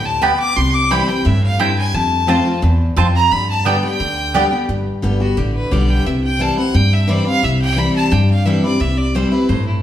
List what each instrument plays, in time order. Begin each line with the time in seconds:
Already playing: upright bass D2, steel-string acoustic guitar A2
0.05 fiddle A5
0.22 steel-string acoustic guitar B2, mandolin B3 G4 D5 G5, fiddle B5
0.39 fiddle D6
0.56 upright bass C2, steel-string acoustic guitar C3, fiddle C6
0.74 fiddle D6
0.91 steel-string acoustic guitar E3 G3 C4 E4, mandolin C4 E4 C5 G5, fiddle B5
1.07 steel-string acoustic guitar C4 E4, fiddle G5
1.25 upright bass G2, steel-string acoustic guitar A2, fiddle E5
1.43 fiddle F5
1.59 steel-string acoustic guitar G2, mandolin C4 E4 C5 G5, fiddle G5
1.78 fiddle G#5
1.94 upright bass F2, steel-string acoustic guitar F2, fiddle A5
2.27 steel-string acoustic guitar F3 A3 C4 F4, mandolin C4 F4 C5 A5
2.45 steel-string acoustic guitar C4 F4
2.62 steel-string acoustic guitar E2, upright bass E2
2.96 steel-string acoustic guitar F2, upright bass F2, mandolin C4 F4 C5 A5
3.15 fiddle A#5
3.31 steel-string acoustic guitar G2, upright bass G2, fiddle B5
3.50 fiddle A5
3.65 steel-string acoustic guitar D3 G3 B3 G4, mandolin B3 G4 D5 G5, fiddle G5
3.83 steel-string acoustic guitar B3 G4, fiddle G5
4.00 upright bass D2, steel-string acoustic guitar D3
4.34 steel-string acoustic guitar D3 G3 B3 G4, mandolin B3 G4 D5 G5
4.51 steel-string acoustic guitar B3 G4
4.69 upright bass G1, steel-string acoustic guitar G2
5.02 upright bass G1, steel-string acoustic guitar D3 G3 B3 G4
5.20 steel-string acoustic guitar B3 G4, fiddle F#4
5.37 upright bass A1, steel-string acoustic guitar D3, fiddle G4
5.54 fiddle B4
5.71 upright bass B1, steel-string acoustic guitar D3 G3 B3 G4, fiddle D5
5.89 fiddle G5
6.06 upright bass C2, steel-string acoustic guitar C3, fiddle E5
6.24 fiddle G5
6.39 steel-string acoustic guitar E3 G3 C4 E4, fiddle A5
6.57 steel-string acoustic guitar C4 E4, fiddle F#5
6.74 steel-string acoustic guitar G2, upright bass G2, fiddle G5
6.93 fiddle E5
7.07 steel-string acoustic guitar E3 G3 C4 E4, fiddle D5
7.25 steel-string acoustic guitar C4 E4, fiddle F5
7.43 upright bass C2, steel-string acoustic guitar C3, fiddle E5
7.62 fiddle G5
7.76 steel-string acoustic guitar E3 G3 C4 E4, fiddle B5
7.96 fiddle A5
8.12 steel-string acoustic guitar G2, upright bass G2, fiddle G5
8.30 fiddle F5
8.46 steel-string acoustic guitar E3 G3 C4 E4, fiddle E5
8.63 steel-string acoustic guitar C4 E4, fiddle D5
8.80 upright bass C2, steel-string acoustic guitar C3, fiddle E5
8.98 fiddle D5
9.15 steel-string acoustic guitar E3 G3 C4 E4, fiddle C5
9.32 steel-string acoustic guitar C4 E4, fiddle B4
9.49 upright bass G2, steel-string acoustic guitar A2, fiddle C5
9.67 fiddle E4